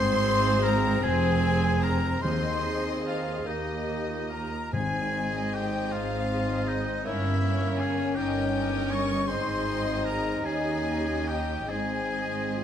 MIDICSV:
0, 0, Header, 1, 12, 480
1, 0, Start_track
1, 0, Key_signature, -4, "major"
1, 0, Tempo, 790514
1, 1360, Time_signature, 6, 3, 24, 8
1, 1360, Tempo, 824176
1, 3280, Tempo, 751880
1, 6160, Tempo, 805369
1, 6640, Tempo, 847458
1, 7652, End_track
2, 0, Start_track
2, 0, Title_t, "Flute"
2, 0, Program_c, 0, 73
2, 0, Note_on_c, 0, 84, 92
2, 390, Note_on_c, 0, 82, 82
2, 399, Note_off_c, 0, 84, 0
2, 632, Note_on_c, 0, 80, 83
2, 641, Note_off_c, 0, 82, 0
2, 1112, Note_on_c, 0, 82, 69
2, 1121, Note_off_c, 0, 80, 0
2, 1345, Note_on_c, 0, 84, 56
2, 1354, Note_off_c, 0, 82, 0
2, 1683, Note_off_c, 0, 84, 0
2, 1842, Note_on_c, 0, 77, 48
2, 2069, Note_off_c, 0, 77, 0
2, 2072, Note_on_c, 0, 75, 41
2, 2566, Note_on_c, 0, 82, 49
2, 2575, Note_off_c, 0, 75, 0
2, 2806, Note_on_c, 0, 80, 59
2, 2815, Note_off_c, 0, 82, 0
2, 3274, Note_on_c, 0, 79, 58
2, 3283, Note_off_c, 0, 80, 0
2, 3530, Note_on_c, 0, 77, 55
2, 3540, Note_off_c, 0, 79, 0
2, 4008, Note_on_c, 0, 75, 53
2, 4018, Note_off_c, 0, 77, 0
2, 4238, Note_off_c, 0, 75, 0
2, 4242, Note_on_c, 0, 76, 60
2, 4725, Note_on_c, 0, 80, 60
2, 4734, Note_off_c, 0, 76, 0
2, 4958, Note_on_c, 0, 79, 52
2, 4967, Note_off_c, 0, 80, 0
2, 5431, Note_on_c, 0, 85, 64
2, 5441, Note_off_c, 0, 79, 0
2, 5671, Note_on_c, 0, 84, 69
2, 5680, Note_off_c, 0, 85, 0
2, 6026, Note_off_c, 0, 84, 0
2, 6177, Note_on_c, 0, 82, 58
2, 6407, Note_on_c, 0, 80, 55
2, 6416, Note_off_c, 0, 82, 0
2, 6885, Note_on_c, 0, 79, 50
2, 6893, Note_off_c, 0, 80, 0
2, 7113, Note_on_c, 0, 80, 43
2, 7122, Note_off_c, 0, 79, 0
2, 7652, Note_off_c, 0, 80, 0
2, 7652, End_track
3, 0, Start_track
3, 0, Title_t, "Violin section"
3, 0, Program_c, 1, 48
3, 0, Note_on_c, 1, 84, 89
3, 394, Note_on_c, 1, 82, 73
3, 401, Note_off_c, 1, 84, 0
3, 634, Note_off_c, 1, 82, 0
3, 636, Note_on_c, 1, 80, 73
3, 1115, Note_off_c, 1, 80, 0
3, 1117, Note_on_c, 1, 82, 61
3, 1350, Note_on_c, 1, 84, 62
3, 1361, Note_off_c, 1, 82, 0
3, 1820, Note_off_c, 1, 84, 0
3, 1843, Note_on_c, 1, 77, 52
3, 2077, Note_off_c, 1, 77, 0
3, 2087, Note_on_c, 1, 75, 43
3, 2566, Note_on_c, 1, 82, 45
3, 2571, Note_off_c, 1, 75, 0
3, 2811, Note_off_c, 1, 82, 0
3, 2813, Note_on_c, 1, 80, 58
3, 3271, Note_off_c, 1, 80, 0
3, 3286, Note_on_c, 1, 79, 54
3, 3528, Note_off_c, 1, 79, 0
3, 3531, Note_on_c, 1, 77, 61
3, 4009, Note_off_c, 1, 77, 0
3, 4010, Note_on_c, 1, 75, 52
3, 4248, Note_off_c, 1, 75, 0
3, 4248, Note_on_c, 1, 76, 64
3, 4719, Note_on_c, 1, 80, 57
3, 4720, Note_off_c, 1, 76, 0
3, 4956, Note_off_c, 1, 80, 0
3, 4956, Note_on_c, 1, 79, 62
3, 5420, Note_off_c, 1, 79, 0
3, 5429, Note_on_c, 1, 85, 68
3, 5671, Note_off_c, 1, 85, 0
3, 5674, Note_on_c, 1, 84, 60
3, 6159, Note_on_c, 1, 82, 57
3, 6162, Note_off_c, 1, 84, 0
3, 6389, Note_off_c, 1, 82, 0
3, 6400, Note_on_c, 1, 80, 65
3, 6874, Note_off_c, 1, 80, 0
3, 6885, Note_on_c, 1, 79, 54
3, 7125, Note_off_c, 1, 79, 0
3, 7128, Note_on_c, 1, 80, 47
3, 7652, Note_off_c, 1, 80, 0
3, 7652, End_track
4, 0, Start_track
4, 0, Title_t, "Violin section"
4, 0, Program_c, 2, 48
4, 0, Note_on_c, 2, 72, 71
4, 613, Note_off_c, 2, 72, 0
4, 630, Note_on_c, 2, 72, 59
4, 1344, Note_off_c, 2, 72, 0
4, 1366, Note_on_c, 2, 75, 49
4, 2063, Note_off_c, 2, 75, 0
4, 2070, Note_on_c, 2, 75, 39
4, 2672, Note_off_c, 2, 75, 0
4, 3052, Note_on_c, 2, 75, 44
4, 3753, Note_off_c, 2, 75, 0
4, 3767, Note_on_c, 2, 75, 41
4, 4237, Note_off_c, 2, 75, 0
4, 4243, Note_on_c, 2, 73, 43
4, 4476, Note_off_c, 2, 73, 0
4, 4488, Note_on_c, 2, 73, 45
4, 4949, Note_off_c, 2, 73, 0
4, 4956, Note_on_c, 2, 75, 43
4, 5183, Note_off_c, 2, 75, 0
4, 5191, Note_on_c, 2, 75, 47
4, 5661, Note_off_c, 2, 75, 0
4, 5676, Note_on_c, 2, 75, 52
4, 6373, Note_off_c, 2, 75, 0
4, 6405, Note_on_c, 2, 75, 48
4, 7114, Note_off_c, 2, 75, 0
4, 7123, Note_on_c, 2, 75, 43
4, 7652, Note_off_c, 2, 75, 0
4, 7652, End_track
5, 0, Start_track
5, 0, Title_t, "Oboe"
5, 0, Program_c, 3, 68
5, 0, Note_on_c, 3, 72, 111
5, 380, Note_on_c, 3, 70, 91
5, 390, Note_off_c, 3, 72, 0
5, 625, Note_on_c, 3, 68, 92
5, 634, Note_off_c, 3, 70, 0
5, 1112, Note_on_c, 3, 70, 77
5, 1121, Note_off_c, 3, 68, 0
5, 1350, Note_off_c, 3, 70, 0
5, 1353, Note_on_c, 3, 72, 78
5, 1736, Note_off_c, 3, 72, 0
5, 1835, Note_on_c, 3, 65, 54
5, 2077, Note_on_c, 3, 63, 54
5, 2086, Note_off_c, 3, 65, 0
5, 2551, Note_off_c, 3, 63, 0
5, 2554, Note_on_c, 3, 70, 54
5, 2799, Note_off_c, 3, 70, 0
5, 2811, Note_on_c, 3, 68, 76
5, 3287, Note_on_c, 3, 67, 59
5, 3296, Note_off_c, 3, 68, 0
5, 3520, Note_on_c, 3, 65, 67
5, 3530, Note_off_c, 3, 67, 0
5, 4011, Note_on_c, 3, 63, 67
5, 4021, Note_off_c, 3, 65, 0
5, 4244, Note_off_c, 3, 63, 0
5, 4248, Note_on_c, 3, 64, 69
5, 4725, Note_on_c, 3, 68, 66
5, 4734, Note_off_c, 3, 64, 0
5, 4955, Note_on_c, 3, 67, 66
5, 4965, Note_off_c, 3, 68, 0
5, 5437, Note_on_c, 3, 73, 84
5, 5447, Note_off_c, 3, 67, 0
5, 5663, Note_off_c, 3, 73, 0
5, 5667, Note_on_c, 3, 72, 82
5, 6160, Note_on_c, 3, 70, 68
5, 6169, Note_off_c, 3, 72, 0
5, 6397, Note_on_c, 3, 68, 70
5, 6406, Note_off_c, 3, 70, 0
5, 6882, Note_on_c, 3, 67, 62
5, 6891, Note_off_c, 3, 68, 0
5, 7116, Note_on_c, 3, 68, 59
5, 7124, Note_off_c, 3, 67, 0
5, 7652, Note_off_c, 3, 68, 0
5, 7652, End_track
6, 0, Start_track
6, 0, Title_t, "Clarinet"
6, 0, Program_c, 4, 71
6, 0, Note_on_c, 4, 68, 63
6, 633, Note_off_c, 4, 68, 0
6, 637, Note_on_c, 4, 68, 65
6, 1174, Note_off_c, 4, 68, 0
6, 1367, Note_on_c, 4, 68, 47
6, 2076, Note_on_c, 4, 67, 37
6, 2085, Note_off_c, 4, 68, 0
6, 2434, Note_on_c, 4, 65, 37
6, 2443, Note_off_c, 4, 67, 0
6, 2807, Note_off_c, 4, 65, 0
6, 2811, Note_on_c, 4, 63, 52
6, 4221, Note_off_c, 4, 63, 0
6, 4260, Note_on_c, 4, 61, 46
6, 4949, Note_off_c, 4, 61, 0
6, 4960, Note_on_c, 4, 63, 49
6, 5490, Note_off_c, 4, 63, 0
6, 5679, Note_on_c, 4, 63, 50
6, 6374, Note_off_c, 4, 63, 0
6, 6407, Note_on_c, 4, 63, 53
6, 7115, Note_off_c, 4, 63, 0
6, 7131, Note_on_c, 4, 63, 36
6, 7596, Note_off_c, 4, 63, 0
6, 7608, Note_on_c, 4, 65, 52
6, 7652, Note_off_c, 4, 65, 0
6, 7652, End_track
7, 0, Start_track
7, 0, Title_t, "Viola section"
7, 0, Program_c, 5, 48
7, 0, Note_on_c, 5, 60, 79
7, 0, Note_on_c, 5, 68, 67
7, 610, Note_off_c, 5, 60, 0
7, 610, Note_off_c, 5, 68, 0
7, 632, Note_on_c, 5, 68, 63
7, 633, Note_on_c, 5, 60, 64
7, 1344, Note_off_c, 5, 68, 0
7, 1345, Note_off_c, 5, 60, 0
7, 1359, Note_on_c, 5, 60, 51
7, 1361, Note_on_c, 5, 68, 49
7, 2058, Note_off_c, 5, 60, 0
7, 2059, Note_off_c, 5, 68, 0
7, 2080, Note_on_c, 5, 67, 43
7, 2081, Note_on_c, 5, 58, 43
7, 2677, Note_off_c, 5, 58, 0
7, 2689, Note_off_c, 5, 67, 0
7, 3056, Note_on_c, 5, 60, 42
7, 3060, Note_on_c, 5, 68, 45
7, 3755, Note_off_c, 5, 60, 0
7, 3758, Note_off_c, 5, 68, 0
7, 3768, Note_on_c, 5, 60, 46
7, 3770, Note_on_c, 5, 68, 44
7, 4237, Note_off_c, 5, 60, 0
7, 4239, Note_off_c, 5, 68, 0
7, 4250, Note_on_c, 5, 70, 44
7, 4251, Note_on_c, 5, 61, 43
7, 4480, Note_off_c, 5, 61, 0
7, 4480, Note_off_c, 5, 70, 0
7, 4488, Note_on_c, 5, 61, 46
7, 4489, Note_on_c, 5, 70, 46
7, 4949, Note_off_c, 5, 61, 0
7, 4949, Note_off_c, 5, 70, 0
7, 4958, Note_on_c, 5, 70, 41
7, 4959, Note_on_c, 5, 61, 41
7, 5188, Note_off_c, 5, 70, 0
7, 5189, Note_off_c, 5, 61, 0
7, 5196, Note_on_c, 5, 70, 52
7, 5199, Note_on_c, 5, 61, 50
7, 5664, Note_off_c, 5, 70, 0
7, 5666, Note_off_c, 5, 61, 0
7, 5681, Note_on_c, 5, 68, 60
7, 5685, Note_on_c, 5, 60, 58
7, 6375, Note_off_c, 5, 68, 0
7, 6377, Note_off_c, 5, 60, 0
7, 6400, Note_on_c, 5, 67, 52
7, 6406, Note_on_c, 5, 61, 46
7, 7114, Note_off_c, 5, 61, 0
7, 7126, Note_off_c, 5, 67, 0
7, 7126, Note_on_c, 5, 60, 41
7, 7127, Note_on_c, 5, 68, 41
7, 7652, Note_off_c, 5, 60, 0
7, 7652, Note_off_c, 5, 68, 0
7, 7652, End_track
8, 0, Start_track
8, 0, Title_t, "Bassoon"
8, 0, Program_c, 6, 70
8, 0, Note_on_c, 6, 60, 82
8, 619, Note_off_c, 6, 60, 0
8, 628, Note_on_c, 6, 60, 67
8, 1170, Note_off_c, 6, 60, 0
8, 1353, Note_on_c, 6, 60, 58
8, 2072, Note_on_c, 6, 58, 46
8, 2081, Note_off_c, 6, 60, 0
8, 2609, Note_off_c, 6, 58, 0
8, 2810, Note_on_c, 6, 60, 58
8, 4220, Note_off_c, 6, 60, 0
8, 4245, Note_on_c, 6, 58, 55
8, 4941, Note_off_c, 6, 58, 0
8, 4957, Note_on_c, 6, 61, 57
8, 5658, Note_off_c, 6, 61, 0
8, 5674, Note_on_c, 6, 60, 58
8, 6397, Note_on_c, 6, 61, 48
8, 6406, Note_off_c, 6, 60, 0
8, 6951, Note_off_c, 6, 61, 0
8, 7125, Note_on_c, 6, 60, 50
8, 7652, Note_off_c, 6, 60, 0
8, 7652, End_track
9, 0, Start_track
9, 0, Title_t, "French horn section"
9, 0, Program_c, 7, 60
9, 0, Note_on_c, 7, 60, 95
9, 1353, Note_on_c, 7, 63, 63
9, 1361, Note_off_c, 7, 60, 0
9, 2414, Note_off_c, 7, 63, 0
9, 2813, Note_on_c, 7, 60, 58
9, 3501, Note_off_c, 7, 60, 0
9, 3520, Note_on_c, 7, 60, 52
9, 4229, Note_off_c, 7, 60, 0
9, 4248, Note_on_c, 7, 61, 62
9, 5673, Note_off_c, 7, 61, 0
9, 5675, Note_on_c, 7, 63, 77
9, 7124, Note_on_c, 7, 60, 52
9, 7125, Note_off_c, 7, 63, 0
9, 7652, Note_off_c, 7, 60, 0
9, 7652, End_track
10, 0, Start_track
10, 0, Title_t, "Timpani"
10, 0, Program_c, 8, 47
10, 1364, Note_on_c, 8, 51, 65
10, 2052, Note_off_c, 8, 51, 0
10, 2812, Note_on_c, 8, 44, 63
10, 3500, Note_off_c, 8, 44, 0
10, 7652, End_track
11, 0, Start_track
11, 0, Title_t, "Cello section"
11, 0, Program_c, 10, 48
11, 0, Note_on_c, 10, 44, 74
11, 609, Note_off_c, 10, 44, 0
11, 633, Note_on_c, 10, 41, 67
11, 1360, Note_off_c, 10, 41, 0
11, 1360, Note_on_c, 10, 39, 49
11, 2059, Note_off_c, 10, 39, 0
11, 2073, Note_on_c, 10, 39, 45
11, 2673, Note_off_c, 10, 39, 0
11, 2811, Note_on_c, 10, 44, 56
11, 3439, Note_off_c, 10, 44, 0
11, 3531, Note_on_c, 10, 44, 53
11, 4165, Note_off_c, 10, 44, 0
11, 4253, Note_on_c, 10, 43, 59
11, 4876, Note_off_c, 10, 43, 0
11, 4963, Note_on_c, 10, 43, 61
11, 5589, Note_off_c, 10, 43, 0
11, 5678, Note_on_c, 10, 44, 52
11, 6374, Note_off_c, 10, 44, 0
11, 6396, Note_on_c, 10, 39, 49
11, 7110, Note_off_c, 10, 39, 0
11, 7128, Note_on_c, 10, 44, 40
11, 7652, Note_off_c, 10, 44, 0
11, 7652, End_track
12, 0, Start_track
12, 0, Title_t, "Double bass section"
12, 0, Program_c, 11, 48
12, 0, Note_on_c, 11, 32, 73
12, 609, Note_off_c, 11, 32, 0
12, 636, Note_on_c, 11, 29, 74
12, 1357, Note_on_c, 11, 39, 48
12, 1361, Note_off_c, 11, 29, 0
12, 2057, Note_off_c, 11, 39, 0
12, 2074, Note_on_c, 11, 39, 46
12, 2674, Note_off_c, 11, 39, 0
12, 2812, Note_on_c, 11, 32, 59
12, 3439, Note_off_c, 11, 32, 0
12, 3525, Note_on_c, 11, 32, 57
12, 4161, Note_off_c, 11, 32, 0
12, 4249, Note_on_c, 11, 31, 63
12, 4874, Note_off_c, 11, 31, 0
12, 4956, Note_on_c, 11, 31, 63
12, 5586, Note_off_c, 11, 31, 0
12, 5674, Note_on_c, 11, 32, 59
12, 6372, Note_off_c, 11, 32, 0
12, 6400, Note_on_c, 11, 39, 55
12, 7111, Note_off_c, 11, 39, 0
12, 7125, Note_on_c, 11, 32, 45
12, 7652, Note_off_c, 11, 32, 0
12, 7652, End_track
0, 0, End_of_file